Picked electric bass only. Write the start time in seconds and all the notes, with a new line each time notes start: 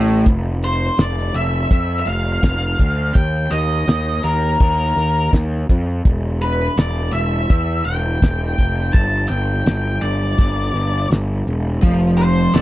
Already playing: A1
0.26 F1
0.98 F1
1.34 F1
1.71 F2
2.06 F1
2.43 F1
2.79 D2
3.15 D#2
3.51 D#2
3.88 D#2
4.24 D#2
4.61 D#2
4.96 D#2
5.33 D#2
5.69 F2
6.05 E1
6.78 E1
7.13 E1
7.50 E2
7.85 E1
8.22 E1
8.59 F1
8.94 G1
9.30 G1
9.66 G1
10.02 G1
10.39 G1
10.74 G1
11.10 G1
11.47 E1
11.83 F1
12.54 F1